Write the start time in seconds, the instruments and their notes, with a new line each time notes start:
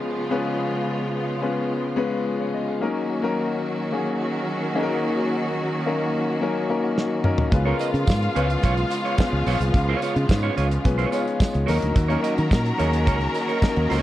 Already playing: string section C#3 F3 G#3 B3 F4, grand piano G#3 B3 C#4 E4 F4 B4
0.30 grand piano G#3 B3 C#4 F4 B4
1.41 grand piano G#3 B3 C#4 F4 B4
1.96 grand piano G#3 B3 C#4 F4 B4
2.40 grand piano F4 C#5
2.54 grand piano D#5
2.68 grand piano G#4 F5
2.79 string section D#3 F#3 A#3 C#4 F#4, grand piano F#3 A#3 C#4 D#4 A#4
3.22 grand piano F#3 A#3 C#4 D#4 A#4
3.91 grand piano F#3 A#3 C#4 D#4 G#4
4.75 grand piano F#3 A#3 C#4 D#4 G#4
4.83 grand piano A#4
5.86 grand piano F#3 A#3 C#4 D#4 A#4
6.41 grand piano F#3 A#3 C#4 D#4 A#4
6.69 grand piano F#3 A#3 C#4 D#4 A#4
6.98 snare
7.23 grand piano F#3 A#3 C#4 D#4 A#4, mid tom
7.38 floor tom
7.51 fingered electric bass C#2, string section C#3 F3 G#3 B3 F4 F5, grand piano G#3 B3 C#4 F4 B4, muted clean electric guitar stroke, kick, closed hi-hat
7.65 grand piano G#3 B3 C#4 F4 A#4, clean electric guitar F4 B4 C#5
7.79 clean electric guitar F4 B4 D#5, closed hi-hat, tambourine
7.93 fingered electric bass C#3, muted clean electric guitar stroke, closed hi-hat
8.07 fingered electric bass G#2, kick, snare, tambourine
8.21 muted clean electric guitar stroke, closed hi-hat
8.35 fingered electric bass C#2, grand piano G#3 B3 C#4 E4 B4, clean electric guitar F4 B4 C#5, closed hi-hat
8.42 grand piano F4
8.50 muted clean electric guitar stroke, closed hi-hat
8.63 fingered electric bass B1, clean electric guitar F4 B4 C#5, kick, closed hi-hat, tambourine
8.77 muted clean electric guitar stroke, closed hi-hat
8.90 muted clean electric guitar stroke, closed hi-hat, tambourine
9.05 clean electric guitar F4 B4 C#5, closed hi-hat
9.18 grand piano G#3 B3 C#4 F4 B4, muted clean electric guitar stroke, kick, snare, tambourine
9.33 fingered electric bass C#2, muted clean electric guitar stroke
9.47 fingered electric bass B1, clean electric guitar F4 B4 C#5, open hi-hat, tambourine
9.60 fingered electric bass C2, muted clean electric guitar stroke, closed hi-hat
9.74 fingered electric bass C#2, muted clean electric guitar stroke, kick, closed hi-hat
9.89 clean electric guitar F4 B4 C#5
10.02 clean electric guitar F4 B4 C#5, closed hi-hat, tambourine
10.16 fingered electric bass C#3, muted clean electric guitar stroke, closed hi-hat
10.29 fingered electric bass G#2, grand piano G#3 B3 C#4 F4 B4, muted clean electric guitar stroke, kick, snare, tambourine
10.43 clean electric guitar F4 B4 C#5
10.56 fingered electric bass C#2, clean electric guitar F4 B4 C#5, closed hi-hat, tambourine
10.71 closed hi-hat
10.84 fingered electric bass B1, grand piano G#3 B3 C#4 F4 B4, muted clean electric guitar stroke, kick, closed hi-hat, tambourine
10.98 clean electric guitar F4 B4 C#5, closed hi-hat
11.11 grand piano G#3 B3 C#4 D#4 C#5, clean electric guitar F4 B4 C#5, closed hi-hat, tambourine
11.20 grand piano F4
11.26 muted clean electric guitar stroke, closed hi-hat
11.39 muted clean electric guitar stroke, kick, snare, tambourine
11.53 fingered electric bass C#2, muted clean electric guitar stroke, closed hi-hat
11.66 fingered electric bass D#2, string section D#3 F#3 A#3 C#4 F#4 A#4 A#5, grand piano F#3 A#3 C#4 D#4 A#4, clean electric guitar F#4 A#4 C#5, snare, open hi-hat, tambourine
11.80 fingered electric bass D2, muted clean electric guitar stroke, closed hi-hat
11.94 fingered electric bass D#2, muted clean electric guitar stroke, kick, closed hi-hat, tambourine
12.08 grand piano F#3 A#3 C#4 D#4 A#4, clean electric guitar F#4 A#4 C#5, closed hi-hat
12.22 clean electric guitar F#4 A#4 D#5, closed hi-hat, tambourine
12.37 fingered electric bass D#3, muted clean electric guitar stroke, closed hi-hat
12.51 fingered electric bass A#2, kick, snare, tambourine
12.65 muted clean electric guitar stroke, closed hi-hat
12.78 fingered electric bass D#2, grand piano F#3 A#3 C#4 D#4 G#4, clean electric guitar F#4 A#4 C#5, closed hi-hat
12.92 muted clean electric guitar stroke, closed hi-hat
13.06 fingered electric bass C#2, clean electric guitar F#4 A#4 C#5, kick, closed hi-hat, tambourine
13.21 muted clean electric guitar stroke, closed hi-hat
13.35 muted clean electric guitar stroke, closed hi-hat, tambourine
13.48 clean electric guitar F#4 A#4 C#5, closed hi-hat
13.62 grand piano F#3 A#3 C#4 D#4 A#4, kick, snare, tambourine
13.76 fingered electric bass D#2, muted clean electric guitar stroke, closed hi-hat
13.90 fingered electric bass C#2, clean electric guitar F#4 A#4 C#5, snare, open hi-hat, tambourine